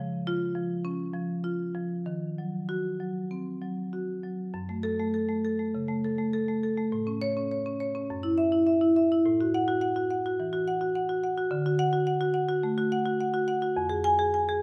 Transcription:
0.00 0.81 C#3 medium
0.00 0.43 F3 soft
0.27 0.73 F4 medium
0.55 1.02 F3 soft
0.85 1.33 C#4 soft
1.14 1.63 F3 soft
1.44 1.94 F4 soft
1.75 2.06 F3 soft
2.06 3.27 D#3 soft
2.38 2.88 F#3 soft
2.69 3.19 F#4 medium
3.00 3.50 F#3 soft
3.31 3.80 C4 soft
3.62 4.11 F#3 soft
3.93 4.42 F#4 soft
4.24 4.54 F#3 soft
4.54 5.70 F#2 medium
4.69 4.93 A3 soft
4.83 5.08 A4 medium
4.99 5.23 A3 soft
5.14 5.38 A4 soft
5.29 5.53 A3 soft
5.45 5.68 A4 soft
5.59 5.83 A3 soft
5.75 5.98 C#3 soft
5.88 6.12 A3 soft
6.04 6.28 A4 soft
6.18 6.42 A3 soft
6.33 6.57 A4 soft
6.48 6.71 A3 soft
6.63 6.86 A4 soft
6.77 6.92 A3 soft
6.92 8.06 A2 medium
7.07 7.30 C#4 soft
7.22 7.45 C#5 medium
7.37 7.60 C#4 soft
7.51 7.74 C#5 soft
7.66 7.89 C#4 soft
7.80 8.03 C#5 soft
7.95 8.09 C#4 soft
8.10 9.23 F#2 medium
8.23 8.47 E4 soft
8.38 8.61 E5 medium
8.52 8.76 E4 soft
8.67 8.90 E5 medium
8.81 9.05 E4 soft
8.96 9.20 E5 soft
9.12 9.26 E4 soft
9.26 10.35 A2 medium
9.41 9.63 F#4 soft
9.54 9.77 F#5 medium
9.68 9.90 F#4 medium
9.81 10.04 F#5 medium
9.96 10.19 F#4 soft
10.11 10.33 F#5 soft
10.26 10.48 F#4 soft
10.40 10.62 E3 soft
10.53 10.75 F#4 soft
10.68 10.90 F#5 medium
10.81 11.03 F#4 soft
10.95 11.18 F#5 medium
11.09 11.31 F#4 soft
11.23 11.46 F#5 soft
11.38 11.51 F#4 soft
11.51 12.60 D3 medium
11.66 11.88 F#4 medium
11.79 12.01 F#5 medium
11.93 12.15 F#4 medium
12.07 12.29 F#5 medium
12.21 12.44 F#4 medium
12.34 12.57 F#5 medium
12.49 12.72 F#4 medium
12.63 12.86 A3 soft
12.78 13.01 F#4 medium
12.92 13.15 F#5 medium
13.06 13.29 F#4 medium
13.21 13.43 F#5 medium
13.34 13.57 F#4 medium
13.48 13.71 F#5 medium
13.62 13.77 F#4 soft
13.77 14.62 F2 medium
13.89 14.14 G#4 medium
14.04 14.28 G#5 medium
14.19 14.43 G#4 medium
14.34 14.57 G#5 medium
14.49 14.62 G#4 medium

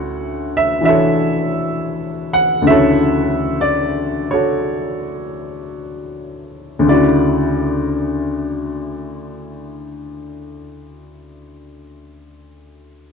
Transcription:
0.00 2.60 D2 soft
0.00 2.62 D3 soft
0.00 2.64 C#4 soft
0.00 2.64 E4 soft
0.00 0.82 F#4 medium
0.00 0.80 A4 medium
0.00 0.81 C#5 medium
0.00 2.33 F#5 medium
0.57 0.84 E5 medium
0.81 2.64 E3 soft
0.81 2.65 D4 soft
0.81 2.65 F#4 soft
0.85 2.63 A4 medium
0.85 2.64 C#5 medium
0.85 2.40 E5 medium
2.33 2.62 F#5 medium
2.62 6.78 D2 soft
2.62 6.84 C#3 soft
2.62 6.80 D3 soft
2.66 6.84 E4 soft
2.66 4.32 F#4 soft
2.66 3.58 E5 medium
2.71 4.32 A4 medium
2.71 4.29 C#5 medium
3.61 4.24 D5 medium
4.31 6.44 F#4 soft
4.31 6.45 A4 soft
4.31 6.43 C#5 medium
6.79 10.51 D2 medium
6.79 10.53 D3 medium
6.85 10.57 C#3 soft
6.85 10.60 E4 soft
6.85 10.57 D5 medium
6.92 10.63 F#4 medium

